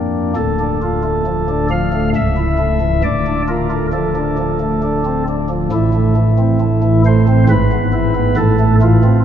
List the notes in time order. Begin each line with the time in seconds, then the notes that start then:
Already playing: F2 A#3 D4
0.36 D1 D2 A4
0.60 D4
0.82 F4
1.04 A3
1.27 F3
1.49 D4
1.71 F3 F5
1.93 A3
2.16 C#1 C#2 E5
2.37 E4
2.59 A3
2.81 E3
3.04 D1 D2 D5
3.27 D4
3.48 F4 A#4
3.71 A3
3.93 F3 A4
4.16 D4
4.39 F3
4.61 A3
4.83 D4
5.05 C4
5.28 D4
5.50 F3
5.72 A1 A2 E4
5.94 A3
6.17 E3
6.38 C4
6.61 A3
6.83 E3
7.06 A3 C5
7.28 C4
7.49 G#1 G#2 B4
7.72 B3
7.93 E4
8.16 B3
8.37 A1 A2 A4
8.60 A3
8.82 E3 F4
9.04 C4